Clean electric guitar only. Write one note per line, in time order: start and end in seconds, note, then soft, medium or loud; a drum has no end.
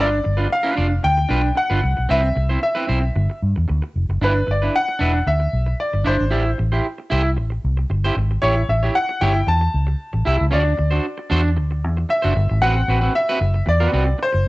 0.00 0.18 D4 medium
0.00 0.11 F4 loud
0.11 muted clean electric guitar stroke soft
0.24 muted clean electric guitar stroke soft
0.37 0.48 D4 medium
0.37 0.49 F4 medium
0.37 0.49 B4 medium
0.49 muted clean electric guitar stroke soft
0.63 0.74 D4 medium
0.63 0.75 F4 medium
0.63 0.77 B4 medium
0.76 0.92 D4 medium
0.76 0.89 F4 medium
0.76 0.89 D5 medium
0.90 muted clean electric guitar stroke soft
1.03 muted clean electric guitar stroke soft
1.18 muted clean electric guitar stroke medium
1.29 1.48 D4 medium
1.29 1.44 F4 medium
1.29 1.43 B4 medium
1.44 muted clean electric guitar stroke medium
1.55 muted clean electric guitar stroke soft
1.70 1.82 D4 medium
1.70 1.83 F4 medium
1.70 1.83 B4 medium
1.82 muted clean electric guitar stroke soft
1.97 muted clean electric guitar stroke soft
2.09 2.28 C4 medium
2.09 2.23 E4 loud
2.09 2.22 B4 loud
2.23 muted clean electric guitar stroke soft
2.36 muted clean electric guitar stroke soft
2.49 2.60 C4 soft
2.49 2.61 E4 medium
2.49 2.63 C5 medium
2.62 muted clean electric guitar stroke soft
2.75 2.86 C4 medium
2.75 2.87 E4 medium
2.75 2.88 B4 medium
2.87 3.03 C4 medium
2.87 3.02 E4 medium
2.87 3.02 C5 medium
3.02 muted clean electric guitar stroke soft
3.16 muted clean electric guitar stroke soft
3.30 muted clean electric guitar stroke soft
3.56 muted clean electric guitar stroke soft
3.68 muted clean electric guitar stroke soft
3.82 muted clean electric guitar stroke medium
4.10 muted clean electric guitar stroke soft
4.22 4.40 D4 medium
4.22 4.36 E4 medium
4.22 4.34 B4 loud
4.35 muted clean electric guitar stroke soft
4.47 muted clean electric guitar stroke soft
4.62 4.76 D4 soft
4.62 4.76 E4 medium
4.62 4.75 B4 medium
4.88 muted clean electric guitar stroke soft
4.99 5.18 D4 medium
4.99 5.15 E4 medium
4.99 5.13 B4 medium
5.15 muted clean electric guitar stroke soft
5.27 muted clean electric guitar stroke soft
5.40 muted clean electric guitar stroke soft
5.67 muted clean electric guitar stroke soft
5.93 muted clean electric guitar stroke soft
6.04 6.24 D4 medium
6.04 6.18 E4 medium
6.04 6.18 D5 medium
6.18 muted clean electric guitar stroke soft
6.31 6.50 E4 medium
6.31 6.46 G4 medium
6.31 6.45 D5 medium
6.46 muted clean electric guitar stroke soft
6.58 muted clean electric guitar stroke soft
6.72 6.86 E4 medium
6.72 6.86 G4 soft
6.72 6.86 C5 medium
6.98 muted clean electric guitar stroke soft
7.10 7.29 E4 loud
7.10 7.24 G4 loud
7.10 7.23 C5 loud
7.24 muted clean electric guitar stroke soft
7.37 muted clean electric guitar stroke soft
7.50 muted clean electric guitar stroke soft
7.77 muted clean electric guitar stroke soft
7.90 muted clean electric guitar stroke soft
8.04 8.16 E4 medium
8.04 8.16 G4 medium
8.04 8.17 C5 medium
8.17 muted clean electric guitar stroke soft
8.31 muted clean electric guitar stroke soft
8.42 8.61 E4 medium
8.42 8.57 G4 medium
8.42 8.56 C#5 loud
8.57 muted clean electric guitar stroke soft
8.69 muted clean electric guitar stroke soft
8.83 8.97 E4 soft
8.83 8.97 G4 medium
8.83 8.96 C#5 medium
9.09 muted clean electric guitar stroke soft
9.21 9.40 E4 medium
9.21 9.36 G4 medium
9.21 9.34 C#5 loud
9.35 muted clean electric guitar stroke medium
9.47 muted clean electric guitar stroke soft
9.61 muted clean electric guitar stroke soft
9.87 muted clean electric guitar stroke soft
10.13 muted clean electric guitar stroke soft
10.25 10.44 E4 medium
10.25 10.39 G4 medium
10.25 10.39 E5 medium
10.39 muted clean electric guitar stroke soft
10.51 10.72 D4 medium
10.51 10.65 F#4 medium
10.51 10.64 D5 medium
10.65 muted clean electric guitar stroke medium
10.78 muted clean electric guitar stroke soft
10.91 11.06 D4 medium
10.91 11.05 F#4 medium
10.91 11.05 C5 medium
11.18 muted clean electric guitar stroke medium
11.30 11.49 D4 loud
11.30 11.44 F#4 medium
11.30 11.43 C5 loud
11.44 muted clean electric guitar stroke medium
11.57 muted clean electric guitar stroke soft
11.71 muted clean electric guitar stroke soft
11.97 muted clean electric guitar stroke medium
12.09 muted clean electric guitar stroke soft
12.22 12.34 D4 medium
12.22 12.35 F#4 medium
12.22 12.35 C5 medium
12.35 muted clean electric guitar stroke soft
12.49 muted clean electric guitar stroke soft
12.62 12.80 C4 medium
12.62 12.77 F#4 medium
12.62 12.76 B4 medium
12.77 muted clean electric guitar stroke soft
12.88 13.02 C4 medium
12.88 13.01 F#4 medium
12.88 13.00 B4 medium
13.01 13.14 C4 medium
13.01 13.15 F#4 medium
13.01 13.15 B4 medium
13.15 muted clean electric guitar stroke soft
13.29 13.39 C4 medium
13.29 13.40 F#4 medium
13.29 13.41 B4 medium
13.40 muted clean electric guitar stroke soft
13.54 muted clean electric guitar stroke soft
13.66 muted clean electric guitar stroke soft
13.80 13.91 C4 medium
13.80 13.92 F#4 medium
13.80 13.92 B4 medium
13.92 14.08 C4 medium
13.92 14.07 F#4 medium
13.92 14.05 B4 medium
14.06 muted clean electric guitar stroke medium
14.18 muted clean electric guitar stroke soft
14.32 muted clean electric guitar stroke soft